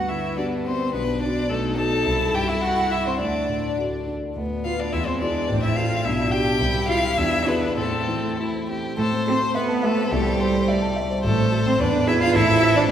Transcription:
Already playing: grand piano G2, violin B3 F#5, cello F#4
0.09 grand piano D3, cello E4, violin E5
0.37 grand piano B3 D4 G4, cello D4, violin D5
0.65 grand piano B3, cello C4, violin C5
0.93 grand piano B1, cello B3, violin D4 B4
1.21 grand piano D4 F#4, cello D4, violin D5
1.49 grand piano B1, cello A3, violin D#4 A4
1.77 grand piano D#4 F#4, cello A4, violin A5
2.05 grand piano C2, violin E4
2.34 grand piano G2, cello G4, violin G5
2.49 cello E4, violin E5
2.61 grand piano E4, cello F#4, violin F#5
2.90 grand piano E4, cello E4, violin E5
3.06 cello C4, violin C5
3.19 grand piano D2, cello D4, violin D4 D5
3.48 grand piano A2
3.78 grand piano D4 F#4 A4
4.07 grand piano D4
4.36 grand piano D2, violin B3
4.65 cello F4, grand piano F4 B4, violin F5
4.79 cello D4, violin D5
4.92 grand piano E2, violin G#3 E5, cello E4
5.07 cello C4, violin C5
5.20 cello D4, grand piano E4 G#4, violin D5
5.49 grand piano A1, violin C4
5.63 cello E4, violin E5
5.76 grand piano E4 A4, cello F4, violin F5
6.05 grand piano B1, violin D4 E5, cello E4
6.31 grand piano D4 G4, cello G4, violin G5
6.60 grand piano C2, violin E4
6.88 grand piano E4 G4, cello F4, violin F5
7.17 grand piano E2, violin D4 E5, cello E4
7.46 cello B3, grand piano E4 G#4, violin B4
7.76 grand piano A2, cello A3, violin C4 A4
8.08 grand piano E3
8.38 grand piano C4 E4 A4, violin E4
8.69 grand piano C4, violin G4
8.98 grand piano A2, cello A3, violin A4 C5
9.12 grand piano C4
9.27 cello C4, grand piano A4, violin C5
9.40 grand piano C5
9.55 cello B3, violin B4, grand piano E5
9.68 grand piano A5
9.83 cello A3, violin A4, grand piano E5
9.96 grand piano C5
10.11 grand piano C2, cello G3, violin G4 A4
10.26 grand piano C4
10.40 grand piano A4, violin C5
10.53 grand piano C5
10.68 violin D5, grand piano E5
10.82 grand piano A5
10.96 grand piano E5
11.10 grand piano C5
11.24 grand piano A1, cello A3, violin A4 C5
11.38 grand piano C4
11.52 grand piano A4
11.65 cello C4, violin C5, grand piano C5
11.79 grand piano E2, cello D4, violin B4 D5
11.94 grand piano B3
12.07 cello E4, grand piano G#4, violin E5
12.20 cello F4, grand piano B4, violin F5
12.34 grand piano A1, cello E4, violin A4 E5
12.48 grand piano C4
12.62 grand piano A4
12.75 cello D4, grand piano C5, violin D5
12.88 grand piano B1

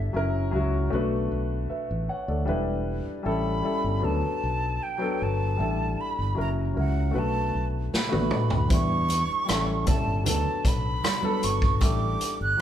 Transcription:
Already playing: fingered electric bass G1, grand piano G3 D4 E4 A4, flute E5
0.13 fingered electric bass F#1, grand piano F#3 C#4 E4 A#4
0.51 fingered electric bass C#2, grand piano F#3 C#4 E4
0.55 grand piano F#4
0.90 fingered electric bass B1, grand piano A3 D4 F#4 B4
1.32 fingered electric bass B1
1.70 grand piano B4 E5, muted fingered electric bass stroke
1.91 fingered electric bass A1
2.09 grand piano C#5 F#5
2.28 fingered electric bass D2, grand piano A4 D5
2.45 fingered electric bass E1, grand piano G3 D4 E4 B4
3.07 muted fingered electric bass stroke
3.23 fingered electric bass A1, grand piano G3 C#4 E4 A4, flute B5
3.61 grand piano G3 C#4 E4 A4, muted fingered electric bass stroke
3.84 fingered electric bass G1
4.00 grand piano F#3 B3 D4 A4
4.04 fingered electric bass D2, flute A5
4.24 muted fingered electric bass stroke
4.44 fingered electric bass B1
4.83 flute G5
4.98 grand piano F#3 B3 D4 A4
5.22 fingered electric bass G1, flute A5
5.57 fingered electric bass A1, grand piano G3 D4 E4 A4
6.01 flute B5
6.19 fingered electric bass G1
6.34 grand piano F#3 C#4 E4 A#4
6.39 fingered electric bass F#1, flute A#5
6.73 fingered electric bass C#2, grand piano F#3 C#4 E4 A#4
6.79 flute F#5
7.11 grand piano A3 D4 F#4 B4
7.16 fingered electric bass B1, flute A5
7.55 fingered electric bass B1
7.94 flute B5, muted fingered electric bass stroke, snare
8.09 grand piano A3 D4 F#4, high tom
8.13 fingered electric bass A1, grand piano B4
8.31 mid tom
8.50 fingered electric bass D2, floor tom
8.67 fingered electric bass E2, grand piano G3 D4 E4, kick, closed hi-hat, muted conga
8.71 grand piano B4, flute C#6
9.09 closed hi-hat, muted conga
9.30 muted fingered electric bass stroke
9.45 grand piano G3 C#4 E4 A4, high conga
9.49 fingered electric bass A1, cross-stick, closed hi-hat
9.84 grand piano G3 C#4 E4 A4, kick, closed hi-hat, low conga
9.88 flute A5
10.07 fingered electric bass G1
10.24 fingered electric bass D2, grand piano F#3 B3 D4 A4, flute A5, closed hi-hat, muted conga, low conga
10.47 muted fingered electric bass stroke
10.65 fingered electric bass B1, flute B5, kick, closed hi-hat
11.04 cross-stick, closed hi-hat, high conga
11.21 grand piano F#3 B3 D4 A4, high conga
11.43 fingered electric bass G1, flute C#6, closed hi-hat
11.62 kick
11.80 fingered electric bass A1, grand piano G3 D4 E4 A4, flute D6, kick, closed hi-hat, muted conga
12.21 closed hi-hat
12.41 fingered electric bass G1, flute F#6
12.57 grand piano F#3

